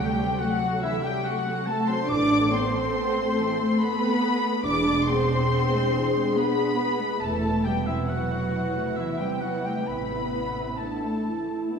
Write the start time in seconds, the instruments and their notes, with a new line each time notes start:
Already playing: double bass section D2, french horn section C3 A4, cello section G3, violin section G4, viola section A4
0.00 viola section A3, oboe G5, violin section G5
0.20 viola section C4
0.39 cello section F#3, viola section A3, violin section F#4 F#5, oboe F#5
0.62 viola section F#3
0.81 viola section D3, cello section E3, violin section E4 E5, oboe E5
1.01 viola section F#3, cello section G3, violin section G4 G5, oboe G5
1.24 cello section F#3, viola section A3, violin section F#4 F#5, oboe F#5
1.46 viola section C4
1.66 cello section A3, viola section A3, violin section A4 A5, oboe A5
1.87 viola section F#3, cello section C4, violin section C5 C6, oboe C6
2.08 double bass section A1, viola section E3 A4, french horn section A3, cello section D4, violin section D5 D6, oboe D6
2.32 viola section A3
2.52 viola section B3, cello section C4, violin section C5 C6, oboe C6
2.76 viola section C4
2.97 viola section B3
3.17 viola section A3
3.39 viola section E3
3.60 viola section A3
3.78 cello section B3, viola section B3, violin section B4 B5, oboe B5
4.02 viola section C4
4.24 viola section B3
4.45 viola section A3
4.64 double bass section E1, viola section E3 G#4, french horn section D4 G#4, cello section D4, violin section D5 D6, oboe D6
4.87 viola section G#3
5.06 viola section B3, cello section C4, violin section C5 C6, oboe C6
5.30 viola section D4
5.52 viola section B3
5.73 viola section G#3
5.93 viola section E3
6.14 viola section G#3
6.34 cello section B3, viola section B3, violin section B4 B5, oboe B5
6.57 viola section D4
6.78 viola section B3
7.01 viola section G#3
7.19 double bass section E1, french horn section C3 B4, viola section E3 E4, cello section A3, violin section A4 A5, oboe A5
7.43 viola section A3
7.64 cello section G3, viola section B3, violin section G4 G5, oboe G5
7.86 cello section E3, viola section C4, violin section E4 E5, oboe E5
8.06 cello section F#3, viola section B3, violin section F#4 F#5, oboe F#5
8.31 viola section A3
8.53 viola section E3
8.75 viola section A3
8.96 cello section E3, viola section B3, violin section E4 E5, oboe E5
9.19 cello section G3, viola section C4, violin section G4 G5, oboe G5
9.41 cello section F#3, viola section B3, violin section F#4 F#5, oboe F#5
9.64 cello section G3, viola section A3, violin section G4 G5, oboe G5
9.86 double bass section A1, viola section E3, cello section B3, violin section B4 B5, oboe B5
10.11 viola section A3
10.34 viola section B3
10.58 viola section C4
10.79 cello section A3, viola section B3, french horn section D4, violin section A4 A5, oboe A5
11.04 viola section A3
11.26 viola section E3, french horn section E4
11.48 viola section A3
11.71 viola section B3, french horn section D4